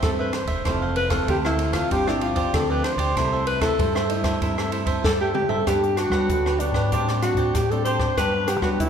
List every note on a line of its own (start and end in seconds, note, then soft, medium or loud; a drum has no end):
0.00 0.63 G2 medium
0.00 0.30 G2 medium
0.00 0.44 E3 medium
0.00 0.44 A3 medium
0.00 0.44 C4 medium
0.00 0.11 A4 medium
0.00 0.17 C5 medium
0.00 0.17 E5 medium
0.00 kick medium
0.00 cross-stick medium
0.00 ride soft
0.19 0.36 B4 medium
0.19 0.32 C5 medium
0.19 0.33 E5 medium
0.33 0.70 C5 medium
0.33 cross-stick medium
0.33 ride soft
0.45 0.61 E1 medium
0.45 0.64 C5 medium
0.45 0.64 E5 medium
0.45 kick medium
0.45 ride soft
0.65 1.19 F1 loud
0.65 1.26 F2 medium
0.65 0.96 E3 medium
0.65 0.96 A3 medium
0.65 0.96 C4 medium
0.65 0.80 E4 medium
0.65 0.81 A4 medium
0.65 0.81 C5 medium
0.65 0.81 F5 medium
0.65 kick medium
0.65 cross-stick medium
0.65 ride soft
0.82 0.95 A4 medium
0.82 0.95 C5 medium
0.82 0.95 F5 medium
0.96 1.11 B4 loud
0.96 muted cavaquinho stroke soft
0.96 ride soft
1.10 1.39 E3 medium
1.10 1.39 A3 medium
1.10 1.39 C4 medium
1.10 1.27 A4 medium
1.10 1.26 C5 medium
1.10 1.26 F5 medium
1.10 kick medium
1.10 cross-stick medium
1.10 ride soft
1.28 1.82 D2 loud
1.28 1.89 C3 medium
1.28 1.43 E4 medium
1.28 1.37 G4 medium
1.28 1.43 A4 medium
1.28 1.44 C5 medium
1.28 1.43 F5 medium
1.28 kick medium
1.28 ride soft
1.45 1.56 E3 medium
1.45 1.56 A3 medium
1.45 1.56 C4 medium
1.45 1.75 E4 medium
1.45 1.73 A4 medium
1.45 1.73 C5 medium
1.45 1.72 F5 medium
1.45 cross-stick medium
1.59 1.89 E3 medium
1.59 1.89 A3 medium
1.59 1.89 C4 medium
1.59 ride medium
1.73 1.93 F4 medium
1.73 1.90 A4 medium
1.73 1.89 C5 medium
1.73 1.89 F5 medium
1.73 kick medium
1.73 cross-stick medium
1.73 ride medium
1.91 2.45 G1 loud
1.91 2.51 G2 medium
1.91 2.01 F3 medium
1.91 2.01 C4 medium
1.91 2.01 D4 medium
1.91 2.06 F4 medium
1.91 2.06 G4 medium
1.91 2.10 G4 loud
1.91 2.06 C5 medium
1.91 2.06 D5 medium
1.91 kick medium
1.91 ride soft
2.07 2.50 F3 medium
2.07 2.50 C4 medium
2.07 2.50 D4 medium
2.07 2.22 E4 medium
2.07 2.20 G4 medium
2.07 2.21 C5 medium
2.07 2.21 D5 medium
2.07 cross-stick medium
2.21 2.37 F4 medium
2.21 2.52 F4 medium
2.21 2.36 G4 soft
2.21 2.35 C5 medium
2.21 2.34 D5 medium
2.21 ride soft
2.35 2.68 G4 medium
2.35 2.68 C5 medium
2.35 2.67 D5 medium
2.35 kick medium
2.35 ride soft
2.54 2.81 D2 medium
2.54 3.14 D3 medium
2.54 2.95 F3 medium
2.54 2.95 C4 medium
2.54 2.95 D4 medium
2.54 2.72 A4 medium
2.54 kick medium
2.54 cross-stick medium
2.54 ride medium
2.70 2.83 G4 medium
2.70 2.86 B4 medium
2.70 2.83 C5 medium
2.70 2.83 D5 medium
2.84 3.46 C5 loud
2.84 muted cavaquinho stroke soft
2.84 cross-stick medium
2.84 ride medium
2.97 3.12 D2 medium
2.97 3.15 G4 medium
2.97 3.14 C5 medium
2.97 3.14 D5 medium
2.97 kick medium
2.97 ride medium
3.16 3.70 C2 loud
3.16 3.76 C3 medium
3.16 3.59 G3 medium
3.16 3.59 A3 medium
3.16 3.31 E4 medium
3.16 3.59 E4 medium
3.16 3.31 A4 medium
3.16 3.32 C5 medium
3.16 3.31 E5 medium
3.16 kick medium
3.16 cross-stick medium
3.16 ride medium
3.32 3.46 A4 medium
3.32 3.46 C5 medium
3.32 3.46 E5 medium
3.47 3.61 B4 medium
3.47 muted cavaquinho stroke soft
3.47 ride soft
3.61 3.89 G3 medium
3.61 3.90 A3 medium
3.61 3.90 E4 medium
3.61 4.06 A4 loud
3.61 3.78 A4 medium
3.61 3.78 C5 medium
3.61 3.77 E5 medium
3.61 kick medium
3.61 cross-stick medium
3.61 ride soft
3.79 4.33 G2 loud
3.79 4.39 G2 medium
3.79 3.94 E4 soft
3.79 3.94 A4 medium
3.79 3.94 C5 medium
3.79 3.94 E5 medium
3.79 kick medium
3.79 ride soft
3.95 4.06 G3 medium
3.95 4.07 A3 medium
3.95 4.07 E4 medium
3.95 4.24 A4 medium
3.95 4.23 C5 medium
3.95 4.22 E5 medium
3.95 cross-stick medium
4.09 4.40 G3 medium
4.09 4.40 A3 medium
4.09 5.00 E4 medium
4.09 4.40 E4 medium
4.09 ride medium
4.24 4.40 A4 medium
4.24 4.40 C5 medium
4.24 4.40 E5 medium
4.24 kick medium
4.24 cross-stick medium
4.24 ride soft
4.41 4.95 G2 medium
4.41 5.02 C3 medium
4.41 4.56 E4 medium
4.41 4.57 A4 medium
4.41 4.57 C5 medium
4.41 4.57 E5 medium
4.41 kick medium
4.41 ride soft
4.58 5.01 G3 medium
4.58 5.01 A3 medium
4.58 5.01 E4 medium
4.58 4.71 A4 medium
4.58 4.71 C5 medium
4.58 4.72 E5 medium
4.58 cross-stick medium
4.71 4.87 E4 soft
4.71 4.87 A4 medium
4.71 4.86 C5 medium
4.71 4.85 E5 medium
4.71 ride soft
4.86 5.19 A4 medium
4.86 5.18 C5 medium
4.86 5.18 E5 medium
4.86 kick medium
4.86 ride soft
5.04 5.31 G2 medium
5.04 5.65 G2 medium
5.04 5.45 G3 medium
5.04 5.46 A3 medium
5.04 5.46 E4 medium
5.04 5.12 A4 loud
5.04 kick loud
5.04 snare medium
5.20 5.28 G4 medium
5.20 5.34 A4 medium
5.20 5.34 C5 medium
5.20 5.34 E5 medium
5.34 5.50 G4 loud
5.34 muted cavaquinho stroke soft
5.34 mid tom medium
5.49 5.64 G2 medium
5.49 5.66 A4 medium
5.49 5.65 C5 medium
5.49 5.65 E5 medium
5.49 floor tom medium
5.67 6.07 G2 loud
5.67 6.27 G2 medium
5.67 6.10 B3 medium
5.67 5.81 D4 medium
5.67 6.10 D4 medium
5.67 5.98 G4 medium
5.67 5.82 G4 medium
5.67 5.82 B4 medium
5.67 5.82 F#5 medium
5.67 kick medium
5.67 cross-stick medium
5.67 closed hi-hat medium
5.83 muted cavaquinho stroke soft
5.83 closed hi-hat soft
5.97 6.12 D4 medium
5.97 6.61 F#4 loud
5.97 6.12 G4 soft
5.97 6.11 B4 soft
5.97 6.11 F#5 medium
5.97 cross-stick medium
5.97 closed hi-hat soft
6.10 6.55 F#3 medium
6.10 6.31 G3 medium
6.10 6.56 B3 medium
6.10 6.56 D4 medium
6.10 6.44 G4 soft
6.10 6.44 B4 medium
6.10 6.43 F#5 medium
6.10 kick medium
6.10 cross-stick medium
6.29 6.70 D2 medium
6.29 6.90 D3 soft
6.29 kick medium
6.29 closed hi-hat medium
6.46 6.59 G4 soft
6.46 6.59 B4 soft
6.46 6.60 F#5 soft
6.46 cross-stick medium
6.60 6.87 F#3 medium
6.60 6.88 B3 medium
6.60 6.75 D4 soft
6.60 7.06 D4 medium
6.60 6.88 D4 medium
6.60 6.75 G4 soft
6.60 6.74 B4 soft
6.60 6.73 F#5 medium
6.60 closed hi-hat medium
6.72 6.92 G#2 medium
6.72 6.91 G4 medium
6.72 6.91 B4 medium
6.72 6.90 F#5 medium
6.72 kick medium
6.72 cross-stick medium
6.92 7.32 A2 medium
6.92 7.53 A2 medium
6.92 7.20 G3 medium
6.92 7.20 C4 medium
6.92 7.07 D4 medium
6.92 7.20 D4 medium
6.92 7.07 G4 medium
6.92 7.07 C5 medium
6.92 7.08 D5 medium
6.92 kick medium
6.92 closed hi-hat medium
7.08 7.22 G4 soft
7.08 7.22 C5 soft
7.08 7.22 D5 soft
7.08 cross-stick medium
7.08 closed hi-hat soft
7.22 7.53 G3 medium
7.22 7.53 C4 medium
7.22 7.54 D4 medium
7.22 7.56 F#4 medium
7.22 cross-stick medium
7.22 closed hi-hat soft
7.35 7.50 A2 loud
7.35 7.69 G4 medium
7.35 7.69 C5 medium
7.35 7.69 D5 medium
7.35 kick medium
7.35 closed hi-hat soft
7.55 8.08 A2 medium
7.55 8.15 A2 medium
7.55 7.72 G4 medium
7.55 kick medium
7.55 cross-stick medium
7.55 closed hi-hat medium
7.71 8.13 G3 medium
7.71 8.14 C4 medium
7.71 8.14 D4 medium
7.71 7.85 G4 soft
7.71 7.84 A4 medium
7.71 7.85 C5 soft
7.71 7.86 D5 soft
7.71 closed hi-hat soft
7.84 8.00 D4 medium
7.84 8.00 G4 medium
7.84 8.15 C5 loud
7.84 7.99 C5 medium
7.84 7.98 D5 medium
7.84 closed hi-hat soft
7.99 8.16 G4 soft
7.99 8.16 C5 soft
7.99 8.15 D5 soft
7.99 kick medium
7.99 cross-stick medium
8.17 8.58 G2 medium
8.17 8.78 G2 medium
8.17 8.47 F#3 medium
8.17 8.48 B3 medium
8.17 8.32 D4 medium
8.17 8.48 D4 medium
8.17 8.32 G4 medium
8.17 8.50 B4 loud
8.17 8.32 B4 medium
8.17 8.33 F#5 medium
8.17 kick medium
8.17 cross-stick medium
8.17 closed hi-hat medium
8.34 muted cavaquinho stroke soft
8.47 8.62 D4 soft
8.47 8.62 G4 soft
8.47 8.62 G4 medium
8.47 8.61 B4 soft
8.47 8.61 F#5 medium
8.47 cross-stick medium
8.47 closed hi-hat medium
8.60 8.89 F#3 medium
8.60 8.82 G3 medium
8.60 8.89 B3 medium
8.60 8.89 D4 medium
8.60 8.70 F#4 medium
8.60 8.89 G4 medium
8.60 8.89 B4 medium
8.60 8.89 F#5 medium
8.60 kick medium
8.60 cross-stick medium
8.80 8.89 D2 medium
8.80 8.89 D3 medium
8.80 8.89 E4 medium
8.80 kick medium
8.80 closed hi-hat medium